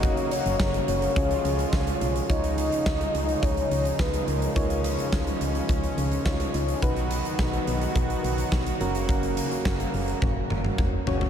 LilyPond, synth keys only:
\new Staff \with { instrumentName = "Synth keys" } { \time 4/4 \key des \mixolydian \tempo 4 = 106 <des' ges' bes' des''>2 <des' f' aes' des''>2 | <ees' f' des''>1 | <ees' f' des''>2. <ees' f' des''>4 | <ees' ges' ces''>2.~ <ees' ges' ces''>8 <des' ges' bes'>8~ |
<des' ges' bes'>2.~ <des' ges' bes'>8 <des' ges' des''>8 | }